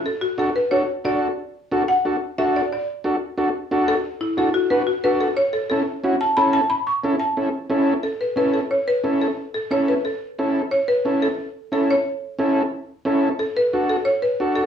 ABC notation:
X:1
M:4/4
L:1/8
Q:1/4=180
K:A
V:1 name="Marimba"
A F A B c2 d2- | d2 z f3 e d | d6 z A- | A E A F B F B A |
c A A2 z a b a | b c'2 a4- a | A B B A c B2 A- | A A c B A3 z |
c B2 A3 A c- | c3 z4 z | A B2 A c B2 A |]
V:2 name="Transistor combo organ"
z2 [DFA] z [DFA] z [DFA] z | z2 [DFA] z [DFA] z [DFA] z | z2 [DFA] z [DFA] z [DFA] z | z2 [DFA] z [DFB] z [DFA] z |
z2 [CEA] z [CEF] z [CEA] z | z2 [CEA] z [CEA] z [CEA] z | z2 [CEA] z3 [CEA] z | z2 [CEA] z3 [CEA] z |
z2 [CEA] z3 [CEA] z | z2 [CEA] z3 [CEA] z | z2 [DFA] z3 [DFA] z |]